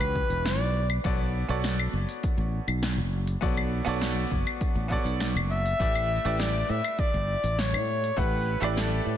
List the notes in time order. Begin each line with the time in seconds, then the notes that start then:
Already playing: E3 G3 E4 F#4 G4 B4 C#5 F#5
0.00 C#2, claves, shaker
0.16 kick
0.30 E1, open hi-hat, shaker
0.45 D5, snare, open hi-hat, shaker
0.59 B1, shaker
0.90 open hi-hat, claves, shaker
1.04 B1 B3 F#4 A4 C#5 D5, kick, open hi-hat, shaker
1.20 shaker
1.49 B1 B3 F#4 A4 C#5 D5, open hi-hat, shaker
1.64 snare, open hi-hat, shaker
1.79 claves, shaker
1.93 F#1
2.09 open hi-hat, shaker
2.23 kick, open hi-hat, shaker
2.37 A1, shaker
2.67 B1, open hi-hat, claves, shaker
2.83 snare, open hi-hat, shaker
2.97 F#1, shaker
3.28 open hi-hat, shaker
3.41 B1 B3 F#4 A4 C#5 D5, kick, open hi-hat, shaker
3.57 claves, shaker
3.85 B1 B3 F#4 A4 C#5, open hi-hat, shaker
3.89 D5
4.01 snare, open hi-hat, shaker
4.17 shaker
4.31 F#1, kick
4.47 open hi-hat, claves, shaker
4.61 kick, open hi-hat, shaker
4.75 A1, shaker
4.88 B3 F#4 A4 C#5 D5, kick
5.05 B1, open hi-hat, shaker
5.20 snare, open hi-hat, shaker
5.35 F#1, claves, shaker
5.52 E5
5.66 open hi-hat, shaker
5.79 A1 A3 E4 G4 B4 D5, kick, open hi-hat, shaker
5.95 claves, shaker
6.24 A1 A3 E4 G4 B4 D5, open hi-hat, shaker
6.40 D5, snare, open hi-hat, shaker
6.56 shaker
6.69 A2 E5
6.84 open hi-hat, claves, shaker
6.99 D5, kick, open hi-hat, shaker
7.14 G1, shaker
7.43 A1, open hi-hat, shaker
7.59 C#5, snare, open hi-hat, shaker
7.73 A2, claves, shaker
8.04 open hi-hat, shaker
8.16 A1 A3 E4 G4 B4 F#5, kick, open hi-hat, shaker
8.34 shaker
8.60 A1 A3 E4 G4 B4 D5, open hi-hat, claves, shaker
8.77 A4, snare, open hi-hat, shaker
8.93 shaker
9.06 A2